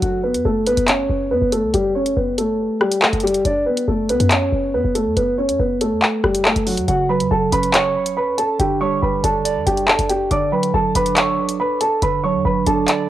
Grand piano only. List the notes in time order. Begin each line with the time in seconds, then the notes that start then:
0.02 F#3 F#4
0.24 B3 B4
0.45 A3 A4
0.67 B3 B4
0.88 C#4 C#5
1.31 B3 B4
1.52 A3 A4
1.74 G3 G4
1.95 C#4 C#5
2.16 B3 B4
2.38 A3 A4
2.81 G3 G4
3.02 A3 A4
3.24 G3 G4
3.45 D4 D5
3.66 B3 B4
3.88 A3 A4
4.10 B3 B4
4.31 C#4 C#5
4.74 B3 B4
4.95 A3 A4
5.17 B3 B4
5.38 C#4 C#5
5.59 B3 B4
5.81 A3 A4
6.24 G3 G4
6.45 A3 A4
6.67 F#3 F#4
6.88 F#4 F#5
7.09 B4 B5
7.31 A4 A5
7.53 B4 B5
7.74 C#5 C#6
8.17 B4 B5
8.38 A4 A5
8.59 G4 G5
8.81 C#5 C#6
9.02 B4 B5
9.24 A4 A5
9.66 G4 G5
9.88 A4 A5
10.09 G4 G5
10.31 D5 D6
10.52 B4 B5
10.74 A4 A5
10.96 B4 B5
11.17 C#5 C#6
11.60 B4 B5
11.81 A4 A5
12.03 B4 B5
12.24 C#5 C#6
12.45 B4 B5
12.67 A4 A5